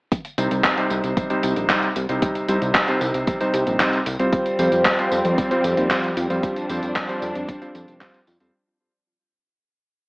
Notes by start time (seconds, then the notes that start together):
0.12 kick, closed hi-hat, tambourine
0.25 closed hi-hat, tambourine
0.38 C2 C3 G3 C4 D#4 C5, closed hi-hat, tambourine
0.51 C2, closed hi-hat, tambourine
0.64 kick, clap, closed hi-hat, tambourine
0.77 C3 G3 C4 D#4 C5, closed hi-hat, tambourine
0.90 C2, closed hi-hat, tambourine
1.04 C2, closed hi-hat, tambourine
1.17 kick, closed hi-hat, tambourine
1.30 C3 G3 C4 D#4 C5, closed hi-hat, tambourine
1.43 C2, closed hi-hat, tambourine
1.56 A#1, closed hi-hat, tambourine
1.70 C3 G3 C4 D#4 C5, kick, clap, closed hi-hat, tambourine
1.83 closed hi-hat
1.96 C2, closed hi-hat, tambourine
2.09 C2 C3 G3 C4 D#4 C5, closed hi-hat, tambourine
2.22 kick, closed hi-hat, tambourine
2.35 closed hi-hat, tambourine
2.48 C2 C3 G3 C4 D#4 C5, closed hi-hat, tambourine
2.62 C2, closed hi-hat, tambourine
2.75 kick, clap, closed hi-hat, tambourine
2.88 C3 G3 C4 D#4 C5, closed hi-hat, tambourine
3.01 C2, closed hi-hat, tambourine
3.14 C2, closed hi-hat, tambourine
3.27 kick, closed hi-hat, tambourine
3.41 C3 G3 C4 D#4 C5, closed hi-hat, tambourine
3.54 C2, closed hi-hat, tambourine
3.67 A#1, closed hi-hat, tambourine
3.80 C3 G3 C4 D#4 C5, kick, clap, closed hi-hat, tambourine
3.93 closed hi-hat, tambourine
4.06 C2, closed hi-hat, tambourine
4.19 C2 G3 C4 F4 C5, closed hi-hat, tambourine
4.33 F3 G3 C4, kick, closed hi-hat, tambourine
4.46 closed hi-hat, tambourine
4.59 F2 G3 C4 F4 C5, closed hi-hat, tambourine
4.72 F2, closed hi-hat, tambourine
4.85 kick, clap, closed hi-hat, tambourine
4.99 G3 C4 F4 C5, closed hi-hat, tambourine
5.12 F2, closed hi-hat, tambourine
5.25 F2, closed hi-hat, tambourine
5.38 kick, closed hi-hat, tambourine
5.51 G3 C4 F4 C5, closed hi-hat, tambourine
5.64 F2, closed hi-hat, tambourine
5.77 D#2, closed hi-hat, tambourine
5.91 G3 C4 F4 C5, kick, clap, closed hi-hat, tambourine
6.04 closed hi-hat
6.17 F2, closed hi-hat, tambourine
6.30 F2 G3 C4 F4 C5, closed hi-hat, tambourine
6.43 D4, kick, closed hi-hat, tambourine
6.56 closed hi-hat, tambourine
6.70 F2 G3 C4 F4 C5, closed hi-hat, tambourine
6.83 F2, closed hi-hat, tambourine
6.96 kick, clap, closed hi-hat, tambourine
7.09 G3 C4 F4 C5, closed hi-hat, tambourine
7.22 F2, closed hi-hat, tambourine
7.35 F2, closed hi-hat, tambourine
7.49 kick, closed hi-hat, tambourine
7.62 G3 C4 F4 C5, closed hi-hat, tambourine
7.75 F2, closed hi-hat, tambourine
7.88 closed hi-hat, tambourine
8.01 G3 C4 F4 C5, kick, clap, closed hi-hat, tambourine
8.14 closed hi-hat, tambourine
8.27 F2, closed hi-hat, tambourine
8.40 F2 G3 C4 F4 C5, closed hi-hat, tambourine